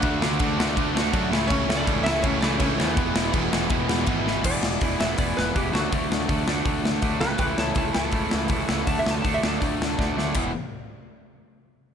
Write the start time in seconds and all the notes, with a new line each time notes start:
Already playing: F#4 F#5
0.02 D2 D3 A3 D4 F#4, kick, crash
0.21 D3 A3 D4 F#4, snare
0.39 D2 D3 A3 D4 F#4, kick, crash
0.58 D2 D3 A3 D4 F#4, snare
0.77 D2 D3 A3 D4 F#4, kick, crash
0.95 D3 A3 D4 F#4, snare
1.13 F#2 D3 A3 D4 F#4, kick, crash
1.30 C#2 A2 C#3 E3 A3 C#4 E4, snare
1.48 C#2 A2 C#3 E3 A3 C#4 E4 C#5, kick, crash
1.66 C#2 A2 C#3 E3 A3 C#4 E4
1.70 snare
1.77 D4 D5
1.85 C#2 A2 C#3 E3 A3 C#4 E4, kick, crash
2.03 C#2 A2 C#3 E3 A3 C#4 E4 E5, snare
2.22 C#2 A2 C#3 E3 A3 C#4 E4 C#5, kick, crash
2.41 C#2 A2 C#3 E3 A3 C#4 D4 E4 D5, snare
2.59 C#2 A2 C#3 E3 A3 C#4 E4 C#5, kick, crash
2.78 D#2 A2 C#3 E3 A3 B3 C#4 E4 B4, snare
2.96 E1 E2 B2 E3 G#3 B3 E4, kick, crash
3.14 E2 B2 E3 G#3 B3 E4, snare
3.32 E1 E2 B2 E3 G#3 B3 E4, kick, crash
3.50 E1 E2 B2 E3 G#3 B3 E4, snare
3.69 E1 E2 B2 E3 G#3 B3 E4, kick, crash
3.87 E2 B2 E3 G#3 B3 E4, snare
4.05 G#1 E2 B2 E3 G#3 B3 E4, kick, crash
4.24 E2 B2 E3 G#3 B3 E4, snare
4.43 E1 E2 B2 E3 G#3 B3 E4 G#4 D5, kick, crash
4.63 E1, snare
4.81 E1 E2 B2 E3 G#3 B3 E4 G#4, kick, open hi-hat
4.99 E1 E2 B2 E3 G#3 B3 E4 G#4 E5, snare
5.17 E1 E2 B2 E3 G#3 B3 E4 G#4 D5, kick, open hi-hat
5.37 E1 B4, snare
5.54 E1 E2 B2 E3 G#3 B3 E4 G4 G#4, kick, open hi-hat
5.72 D2 D3 F#3 A3 D4 F#4, snare
5.91 D2 D3 F#3 A3 D4 F#4, kick, open hi-hat
6.12 D2, snare
6.28 D2 D3 F#3 A3 D4 F#4, kick, open hi-hat
6.46 D2 D3 F#3 A3 D4 F#4, snare
6.65 D2 D3 F#3 A3 D4 F#4, kick, open hi-hat
6.84 D2, snare
7.02 D2 D3 F#3 A3 D4 F#4, kick, open hi-hat
7.20 C#2 A2 C#3 E3 A3 E4 B4 G5, snare
7.38 C#2 A2 C#3 E3 A3 E4 B4 G5, kick, open hi-hat
7.58 C#2 C#5 A5, snare
7.74 C#2 A2 C#3 E3 A3 E4 C#5, kick, open hi-hat
7.78 A5
7.93 C#2 A2 C#3 E3 A3 E4 A5, snare
8.11 C#2 A2 C#3 E3 A3 E4, kick, open hi-hat
8.31 C#2, snare
8.48 C#2 A2 C#3 E3 A3 E4, kick, open hi-hat
8.67 C#2 A2 C#3 E3 A3 E4, snare
8.86 D2 D3 F#3 A3 D4 A5, kick, open hi-hat
8.99 E5
9.06 D2, snare
9.10 A5
9.22 D2 D3 F#3 A3 D4 A5, kick, open hi-hat
9.34 E5
9.42 D2 D3 F#3 A3 D4, snare
9.48 A5
9.60 D2 D3 F#3 A3 D4 D5, kick, open hi-hat
9.81 D2, snare
9.98 D2 D3 F#3 A3 D4, kick, snare
10.16 D2 D3 F#3 A3 D4, snare
10.34 E1 E2 B2 E3 G#3 B3 E4, kick, crash